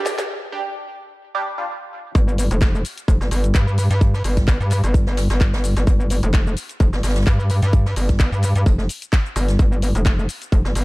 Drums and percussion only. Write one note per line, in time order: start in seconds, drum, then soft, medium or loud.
0.05 snare loud
0.05 closed hi-hat medium
0.05 open hi-hat loud
0.05 shaker medium
0.18 snare medium
0.18 snare soft
0.18 closed hi-hat medium
0.18 shaker soft
2.14 kick loud
2.14 closed hi-hat medium
2.14 shaker soft
2.29 shaker soft
2.38 closed hi-hat medium
2.38 open hi-hat loud
2.38 shaker medium
2.51 closed hi-hat medium
2.51 shaker soft
2.62 kick loud
2.62 snare loud
2.62 clap loud
2.62 closed hi-hat medium
2.62 shaker soft
2.75 shaker soft
2.85 closed hi-hat medium
2.85 open hi-hat loud
2.85 shaker medium
2.98 closed hi-hat medium
2.98 closed hi-hat soft
2.98 shaker soft
3.08 kick loud
3.08 closed hi-hat medium
3.08 shaker soft
3.21 snare soft
3.21 shaker soft
3.31 closed hi-hat medium
3.31 open hi-hat loud
3.31 shaker medium
3.44 closed hi-hat medium
3.44 shaker soft
3.54 kick loud
3.54 snare loud
3.54 clap loud
3.54 closed hi-hat medium
3.54 shaker soft
3.68 shaker soft
3.78 closed hi-hat medium
3.78 open hi-hat loud
3.78 shaker medium
3.91 snare medium
3.91 closed hi-hat medium
3.91 shaker soft
4.01 kick loud
4.01 closed hi-hat medium
4.01 shaker soft
4.14 snare soft
4.14 shaker soft
4.24 open hi-hat medium
4.24 open hi-hat loud
4.24 shaker medium
4.37 kick medium
4.37 snare soft
4.37 closed hi-hat medium
4.37 shaker soft
4.48 kick loud
4.48 snare loud
4.48 clap loud
4.48 closed hi-hat medium
4.48 shaker soft
4.61 shaker soft
4.71 clap soft
4.71 closed hi-hat medium
4.71 open hi-hat loud
4.71 shaker medium
4.84 closed hi-hat medium
4.84 shaker soft
4.94 kick loud
4.94 closed hi-hat medium
4.94 shaker soft
5.06 snare soft
5.06 shaker soft
5.17 snare loud
5.17 closed hi-hat medium
5.17 open hi-hat loud
5.17 shaker medium
5.30 snare loud
5.30 closed hi-hat medium
5.30 shaker soft
5.41 kick loud
5.41 snare loud
5.41 clap loud
5.41 closed hi-hat medium
5.41 shaker soft
5.53 snare medium
5.53 closed hi-hat medium
5.53 shaker soft
5.64 closed hi-hat medium
5.64 open hi-hat loud
5.64 shaker medium
5.77 snare medium
5.77 closed hi-hat medium
5.77 shaker soft
5.87 kick loud
5.87 closed hi-hat soft
5.87 closed hi-hat medium
5.87 shaker soft
6.01 shaker soft
6.10 closed hi-hat medium
6.10 open hi-hat loud
6.10 shaker medium
6.23 closed hi-hat medium
6.23 shaker soft
6.33 kick loud
6.33 snare loud
6.33 clap loud
6.33 closed hi-hat medium
6.33 shaker soft
6.47 shaker soft
6.57 closed hi-hat medium
6.57 open hi-hat loud
6.57 shaker medium
6.69 closed hi-hat soft
6.69 closed hi-hat medium
6.69 shaker soft
6.80 kick loud
6.80 closed hi-hat soft
6.80 closed hi-hat medium
6.80 shaker soft
6.93 snare soft
6.93 shaker soft
7.03 snare medium
7.03 closed hi-hat medium
7.03 open hi-hat loud
7.03 shaker medium
7.09 snare medium
7.09 closed hi-hat medium
7.15 snare loud
7.15 closed hi-hat medium
7.15 shaker soft
7.21 snare medium
7.21 closed hi-hat medium
7.26 kick loud
7.26 snare loud
7.26 clap loud
7.26 closed hi-hat soft
7.26 closed hi-hat loud
7.26 shaker soft
7.40 shaker soft
7.49 closed hi-hat medium
7.49 open hi-hat loud
7.49 shaker medium
7.62 snare soft
7.62 closed hi-hat medium
7.62 shaker soft
7.73 kick loud
7.73 closed hi-hat soft
7.73 closed hi-hat medium
7.73 shaker soft
7.86 snare medium
7.86 shaker soft
7.96 open hi-hat medium
7.96 open hi-hat loud
7.96 shaker medium
8.09 kick medium
8.09 snare soft
8.09 closed hi-hat medium
8.09 shaker soft
8.20 kick loud
8.20 snare loud
8.20 clap loud
8.20 closed hi-hat medium
8.20 shaker soft
8.33 shaker soft
8.43 clap soft
8.43 closed hi-hat medium
8.43 open hi-hat loud
8.43 shaker medium
8.56 closed hi-hat medium
8.56 shaker soft
8.66 kick loud
8.66 closed hi-hat soft
8.66 closed hi-hat medium
8.66 shaker soft
8.78 snare soft
8.78 shaker soft
8.89 closed hi-hat medium
8.89 open hi-hat loud
8.89 shaker medium
9.02 closed hi-hat medium
9.02 shaker soft
9.12 kick loud
9.12 snare loud
9.12 clap loud
9.12 closed hi-hat soft
9.12 closed hi-hat loud
9.12 shaker soft
9.26 shaker soft
9.36 closed hi-hat medium
9.36 open hi-hat loud
9.36 shaker medium
9.49 snare medium
9.49 closed hi-hat medium
9.49 shaker soft
9.59 kick loud
9.59 closed hi-hat soft
9.59 closed hi-hat medium
9.59 shaker soft
9.73 shaker soft
9.82 closed hi-hat medium
9.82 open hi-hat loud
9.82 shaker medium
9.95 closed hi-hat medium
9.95 shaker soft
10.05 kick loud
10.05 snare loud
10.05 clap loud
10.05 closed hi-hat medium
10.05 shaker soft
10.19 shaker soft
10.28 closed hi-hat medium
10.28 open hi-hat loud
10.28 shaker medium
10.42 closed hi-hat medium
10.42 closed hi-hat soft
10.42 shaker soft
10.52 kick loud
10.52 closed hi-hat soft
10.52 closed hi-hat medium
10.52 shaker soft
10.65 snare soft
10.65 shaker soft
10.75 closed hi-hat medium
10.75 open hi-hat loud
10.75 shaker medium